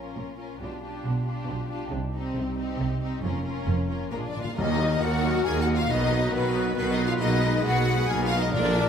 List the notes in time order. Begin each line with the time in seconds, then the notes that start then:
Already playing: F3 C#4 F4 A#4
0.16 A#1 A#2
0.38 C#4 F4 A#4
0.60 B1 B2 G3 D4 F4 G4
0.82 D4 F4 G4
1.04 B1 B2
1.26 D4 F4 G4
1.47 B1 B2
1.69 D4 F4
1.73 G4
1.91 C2 C3 D#4
2.13 C4 D#4 G4
2.35 C2 C3
2.57 C4 D#4 G4
2.79 C2 C3
3.02 C4 D#4 G4
3.22 F1 F2 A#3 C#4 F4 A#4
3.44 C#4 F4 A#4
3.66 F1 F2
3.88 C#4 F4 A#4
4.11 A#1 A#2 G#3 A#3 D4 F4 G#4 A#4
4.20 A#2
4.27 A#2 D4 D5
4.34 A#2 D4 F4 G#4
4.41 A#2 F4 F5
4.55 D#2 D#3 A#3 D#4 F#4 A#4 D#5
4.78 F#3 D#4
5.00 D#2 D#3 A#3 F#4 F#5
5.24 F#3 D#4
5.44 D#2 D#3 A#3 G#4 G#5
5.60 F#4 F#5
5.67 F#3 D#4
5.74 F4 F5
5.89 B1 B2 D#3 B3 D#4 B4 D#5
6.10 F#3 D#4
6.32 B1 B2 D#3 B3 B4
6.54 F#3 D#4
6.75 B1 B2 D#3 B3 B4
6.91 D#4 D#5
6.98 F#3 D#4
7.06 F4 F5
7.20 B1 B2 A#3 B3 D#4 G#4 D#5
7.43 G#3 B3
7.63 B1 B2 A#3 B3 F#4 F#5
7.89 G#3 B3
8.08 B1 B2 A#3 G#4 A#4 G#5
8.12 B3
8.24 F4 F5
8.34 G#3 B3 D#4
8.39 D#4 D#5
8.51 A#1 A#2 D4 F4 D5
8.56 D3 A#3
8.77 F3 D4